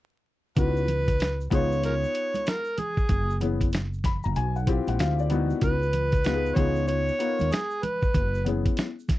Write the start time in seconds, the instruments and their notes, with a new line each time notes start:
0.56 fretless electric bass C#2, grand piano B3 D#4 E4 F#4, harmonica B4, kick, closed hi-hat, shaker
0.77 shaker
0.88 closed hi-hat, low conga, shaker
1.08 kick, closed hi-hat, shaker
1.19 snare, closed hi-hat, shaker
1.41 shaker
1.50 fretless electric bass C#2, grand piano B3 D#4 F4 G#4, harmonica C#5, kick, closed hi-hat, low conga, shaker
1.72 shaker
1.83 harmonica A#4 C#5, closed hi-hat, shaker
2.04 shaker
2.15 closed hi-hat, shaker
2.34 closed hi-hat, high conga, shaker
2.46 harmonica A#4, snare, closed hi-hat, shaker
2.65 shaker
2.78 harmonica G#4, closed hi-hat, high conga, low conga, shaker
2.97 kick, shaker
3.09 fretless electric bass F#1, kick, closed hi-hat, shaker
3.30 shaker
3.41 grand piano B3 C#4 E4 G#4, closed hi-hat, low conga, shaker
3.61 kick, closed hi-hat, shaker
3.72 snare, closed hi-hat, shaker
3.93 shaker
4.04 grand piano B5, kick, snare, closed hi-hat, low conga, shaker
4.23 fretless electric bass F#1, grand piano A#5, shaker
4.36 fretless electric bass B1, grand piano G#5, closed hi-hat, shaker
4.56 grand piano F#5, shaker
4.67 grand piano C4 E4 F4 G4, kick, closed hi-hat, shaker
4.87 fretless electric bass A#1, grand piano F#5, closed hi-hat, high conga, shaker
4.99 fretless electric bass D2, grand piano F5, snare, closed hi-hat, shaker
5.19 grand piano D5, shaker
5.30 grand piano B3 D#4 E4 F#4, closed hi-hat, high conga, low conga, shaker
5.50 shaker
5.61 fretless electric bass C#2, harmonica B4, kick, closed hi-hat, shaker
5.82 shaker
5.93 closed hi-hat, low conga, shaker
6.12 kick, closed hi-hat, shaker
6.24 grand piano B3 D#4 F4 G4, snare, closed hi-hat, shaker
6.34 grand piano G#4
6.46 shaker
6.56 fretless electric bass C#2, grand piano B3 D#4 F4 G#4, harmonica C#5, kick, closed hi-hat, low conga, shaker
6.76 shaker
6.87 harmonica C#5, closed hi-hat, shaker
7.08 shaker
7.19 grand piano B3 D#4 F4 A#4, closed hi-hat, shaker
7.39 fretless electric bass D#2, closed hi-hat, high conga, shaker
7.51 harmonica G#4, snare, closed hi-hat, shaker
7.70 shaker
7.83 harmonica B4, closed hi-hat, high conga, low conga, shaker
8.02 kick, shaker
8.14 fretless electric bass F#1, kick, closed hi-hat, shaker
8.34 shaker
8.45 grand piano B3 C#4 E4 G#4, closed hi-hat, high conga, low conga, shaker
8.65 kick, closed hi-hat, shaker
8.77 snare, closed hi-hat, shaker
8.99 shaker
9.08 kick, snare, closed hi-hat, low conga, shaker